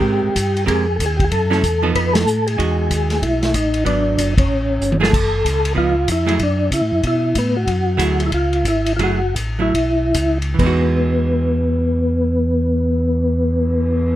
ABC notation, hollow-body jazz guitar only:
X:1
M:4/4
L:1/8
Q:"Swing" 1/4=189
K:E
V:1 name="Hollow-body jazz guitar"
[G,=C=G^A]2 z2 [^G,^B,=GA] z3 | z [F,CEA] z [=F,B,DA]3 z2 | [G,DF]4- [G,DF] z3 | [F,B,=D]3 z4 [F,A,EG] |
z4 [^E,B,D] z2 [F,A,=EG] | z8 | z2 [F,A,EG]2 z4 | [F,A,EG] z2 [F,A,E] z4 |
[E,G,DF]8- | [E,G,DF]8 |]